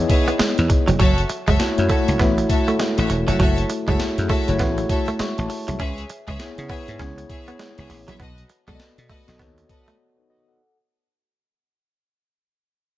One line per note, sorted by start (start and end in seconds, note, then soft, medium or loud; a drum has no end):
0.00 1.02 B3 medium
0.00 1.02 E4 medium
0.00 1.02 G#4 medium
0.00 1.01 B4 medium
0.00 0.72 C#5 medium
0.00 1.01 D#5 loud
0.09 0.26 G#4 medium
0.09 0.26 B4 medium
0.09 0.26 C#5 medium
0.09 0.26 E5 medium
0.09 kick medium
0.09 closed hi-hat medium
0.28 0.36 B3 medium
0.28 closed hi-hat soft
0.39 0.52 G#3 medium
0.39 muted slap bass stroke soft
0.39 snare loud
0.39 closed hi-hat medium
0.58 0.68 E2 medium
0.58 closed hi-hat soft
0.70 muted clean electric guitar stroke soft
0.70 kick medium
0.70 closed hi-hat medium
0.88 0.98 F1 loud
0.88 0.96 F#3 medium
0.88 closed hi-hat medium
0.99 1.24 F#1 loud
0.99 1.12 F#3 medium
0.99 1.16 F#4 medium
0.99 1.16 A4 medium
0.99 1.16 C#5 medium
0.99 1.16 E5 medium
0.99 kick loud
0.99 closed hi-hat medium
1.18 closed hi-hat soft
1.29 muted clean electric guitar stroke soft
1.29 closed hi-hat medium
1.48 1.57 F#1 medium
1.48 1.56 G#3 medium
1.48 1.58 F#4 medium
1.48 1.58 A4 medium
1.48 1.58 C#5 medium
1.48 1.58 E5 medium
1.48 kick medium
1.48 closed hi-hat soft
1.59 1.73 A3 medium
1.59 1.74 E4 medium
1.59 1.74 F#4 medium
1.59 1.74 C#5 medium
1.59 muted slap bass stroke soft
1.59 snare loud
1.59 closed hi-hat medium
1.78 1.88 F#2 medium
1.78 1.87 A3 medium
1.78 1.87 E4 medium
1.78 1.87 F#4 medium
1.78 1.87 C#5 medium
1.78 closed hi-hat medium
1.89 2.14 A3 medium
1.89 2.02 A3 medium
1.89 2.14 E4 medium
1.89 2.06 F#4 medium
1.89 2.14 F#4 medium
1.89 2.06 A4 medium
1.89 2.06 C#5 medium
1.89 2.15 C#5 medium
1.89 2.06 E5 medium
1.89 kick medium
1.89 closed hi-hat medium
2.08 2.17 C#2 medium
2.08 closed hi-hat medium
2.19 2.43 A1 medium
2.19 2.55 A3 medium
2.19 2.32 B3 medium
2.19 2.55 E4 medium
2.19 2.55 F#4 medium
2.19 2.55 E5 medium
2.19 kick medium
2.19 snare medium
2.19 closed hi-hat medium
2.38 muted clean electric guitar stroke soft
2.38 closed hi-hat medium
2.49 2.66 F#4 medium
2.49 2.66 A4 medium
2.49 2.66 C#5 medium
2.49 2.66 E5 medium
2.49 kick medium
2.49 closed hi-hat medium
2.68 3.59 A3 medium
2.68 2.76 A3 medium
2.68 3.59 E4 medium
2.68 3.59 F#4 medium
2.68 3.60 A4 medium
2.68 closed hi-hat soft
2.80 2.92 G#3 medium
2.80 snare loud
2.80 closed hi-hat medium
2.98 3.07 A1 medium
2.98 3.08 F#4 medium
2.98 3.08 A4 medium
2.98 3.08 C#5 medium
2.98 3.08 E5 medium
2.98 closed hi-hat soft
3.10 3.24 E1 medium
3.10 muted clean electric guitar stroke soft
3.10 closed hi-hat medium
3.28 3.38 F1 medium
3.28 3.36 F#3 medium
3.28 3.38 F#4 medium
3.28 3.38 A4 medium
3.28 3.38 C#5 medium
3.28 3.38 E5 medium
3.28 closed hi-hat medium
3.39 3.64 F#1 loud
3.39 3.52 F#3 medium
3.39 3.56 F#4 medium
3.39 3.56 A4 medium
3.39 3.56 C#5 medium
3.39 3.56 E5 loud
3.39 kick loud
3.39 closed hi-hat medium
3.58 closed hi-hat medium
3.70 muted clean electric guitar stroke soft
3.70 closed hi-hat medium
3.88 3.97 F#1 medium
3.88 3.96 G#3 medium
3.88 4.30 A3 medium
3.88 4.31 E4 medium
3.88 3.98 F#4 medium
3.88 4.31 F#4 medium
3.88 4.31 G#4 medium
3.88 3.98 A4 medium
3.88 3.98 C#5 medium
3.88 3.98 E5 medium
3.88 kick medium
3.88 closed hi-hat soft
4.00 snare loud
4.00 closed hi-hat medium
4.18 4.27 F#2 loud
4.18 closed hi-hat medium
4.29 4.42 A3 medium
4.29 4.46 F#4 medium
4.29 4.46 A4 medium
4.29 4.46 C#5 medium
4.29 4.46 E5 medium
4.29 kick medium
4.29 open hi-hat medium
4.48 4.58 F#1 medium
4.48 4.57 A3 medium
4.48 4.57 E4 medium
4.48 4.57 F#4 medium
4.48 4.57 C#5 loud
4.48 closed hi-hat medium
4.59 4.83 A1 medium
4.59 5.51 A3 medium
4.59 4.72 B3 medium
4.59 5.52 E4 medium
4.59 5.52 F#4 medium
4.59 5.20 C#5 medium
4.59 kick medium
4.59 snare medium
4.59 closed hi-hat medium
4.78 muted clean electric guitar stroke soft
4.78 closed hi-hat medium
4.89 5.06 F#4 medium
4.89 5.06 A4 medium
4.89 5.06 C#5 medium
4.89 5.06 E5 medium
4.89 kick medium
4.89 closed hi-hat medium
5.08 5.16 A3 medium
5.08 closed hi-hat soft
5.19 5.32 G#3 medium
5.19 5.37 E5 medium
5.19 5.37 C#6 medium
5.19 muted slap bass stroke soft
5.19 snare loud
5.19 closed hi-hat medium
5.38 5.48 A1 medium
5.38 5.67 C#5 medium
5.38 5.67 A5 medium
5.38 closed hi-hat soft
5.50 muted clean electric guitar stroke soft
5.50 open hi-hat medium
5.68 5.77 C2 medium
5.68 5.76 F#3 medium
5.68 5.97 G#4 medium
5.68 5.97 E5 medium
5.68 closed hi-hat medium
5.79 6.04 C#2 loud
5.79 5.92 C#4 medium
5.79 5.96 G#4 medium
5.79 5.96 B4 medium
5.79 5.96 C#5 medium
5.79 5.96 E5 loud
5.79 kick loud
5.79 closed hi-hat medium
5.98 closed hi-hat medium
6.10 muted clean electric guitar stroke soft
6.10 closed hi-hat medium
6.27 6.37 C#2 medium
6.27 6.36 G#3 medium
6.27 6.38 G#4 medium
6.27 6.38 B4 medium
6.27 6.38 C#5 medium
6.27 6.38 E5 medium
6.27 kick medium
6.27 closed hi-hat soft
6.40 6.53 B3 medium
6.40 6.54 E4 medium
6.40 6.54 G#4 medium
6.40 6.54 C#5 medium
6.40 snare loud
6.40 closed hi-hat medium
6.58 6.67 C#3 loud
6.58 6.67 B3 medium
6.58 6.67 E4 medium
6.58 6.67 G#4 medium
6.58 6.67 C#5 medium
6.58 closed hi-hat medium
6.69 6.94 B3 medium
6.69 6.82 B3 medium
6.69 6.94 E4 medium
6.69 6.86 G#4 medium
6.69 6.94 G#4 medium
6.69 6.86 B4 medium
6.69 6.86 C#5 medium
6.69 6.95 C#5 loud
6.69 6.86 E5 medium
6.69 kick medium
6.69 open hi-hat medium
6.88 6.97 G#2 medium
6.88 closed hi-hat soft
6.99 7.23 C#2 medium
6.99 7.35 B3 medium
6.99 7.12 C#4 medium
6.99 7.35 E4 medium
6.99 7.35 G#4 medium
6.99 7.35 C#5 medium
6.99 kick medium
6.99 snare medium
6.99 closed hi-hat medium
7.18 muted clean electric guitar stroke soft
7.18 closed hi-hat medium
7.29 7.46 G#4 medium
7.29 7.46 B4 medium
7.29 7.46 C#5 medium
7.29 7.46 E5 medium
7.29 kick medium
7.29 closed hi-hat medium
7.48 8.20 B3 medium
7.48 7.56 B3 medium
7.48 8.20 E4 medium
7.48 8.20 G#4 medium
7.48 8.20 C#5 medium
7.48 closed hi-hat soft
7.59 7.72 G#3 medium
7.59 snare loud
7.59 closed hi-hat medium
7.78 7.88 C#2 medium
7.78 7.88 G#4 medium
7.78 7.88 B4 medium
7.78 7.88 C#5 medium
7.78 7.89 E5 medium
7.78 closed hi-hat soft
7.90 8.04 A1 medium
7.90 muted clean electric guitar stroke soft
7.90 open hi-hat medium
8.08 8.17 A#1 loud
8.08 8.16 F#3 medium
8.08 8.18 G#4 medium
8.08 8.18 B4 medium
8.08 8.18 C#5 medium
8.08 8.19 E5 medium
8.08 closed hi-hat medium
8.19 8.44 B1 loud
8.19 8.32 B3 medium
8.19 8.36 F#4 medium
8.19 8.36 A4 medium
8.19 8.36 B4 medium
8.19 8.36 D#5 loud
8.19 kick loud
8.19 closed hi-hat medium
8.38 closed hi-hat medium
8.49 muted clean electric guitar stroke soft
8.49 closed hi-hat medium
8.67 8.77 B1 medium
8.67 8.76 G#3 medium
8.67 9.10 B3 medium
8.67 8.78 F#4 medium
8.67 9.11 F#4 medium
8.67 8.78 A4 medium
8.67 9.11 A4 medium
8.67 8.78 B4 medium
8.67 8.73 D5 medium
8.67 8.78 D#5 medium
8.67 kick medium
8.67 closed hi-hat soft
8.75 9.14 D#5 medium
8.80 muted slap bass stroke medium
8.80 snare loud
8.80 closed hi-hat medium
8.98 9.07 B2 loud
8.98 closed hi-hat medium
9.09 9.22 A3 medium
9.09 9.26 F#4 medium
9.09 9.26 A4 medium
9.09 9.26 B4 medium
9.09 9.26 D#5 medium
9.09 kick medium
9.09 open hi-hat medium
9.28 9.37 B1 medium
9.28 9.37 B3 medium
9.28 9.37 F#4 medium
9.28 9.37 A4 medium
9.28 9.37 D#5 loud
9.28 snare medium
9.28 closed hi-hat soft
9.39 9.63 D#2 medium
9.39 10.31 B3 medium
9.39 9.52 B3 medium
9.39 10.00 F#4 medium
9.39 10.00 A4 medium
9.39 10.00 C#5 medium
9.39 kick medium
9.39 snare medium
9.39 closed hi-hat medium
9.58 muted clean electric guitar stroke soft
9.58 closed hi-hat medium
9.69 9.86 F#4 medium
9.69 9.86 A4 medium
9.69 9.86 B4 medium
9.69 9.86 D#5 medium
9.69 kick medium
9.69 closed hi-hat medium
9.88 9.96 A3 medium
9.88 closed hi-hat soft
10.18 10.30 D#4 soft
10.18 10.29 B4 medium
10.30 10.47 F#4 medium
10.30 10.47 D#5 medium
10.48 10.77 A4 medium
10.48 10.77 F#5 medium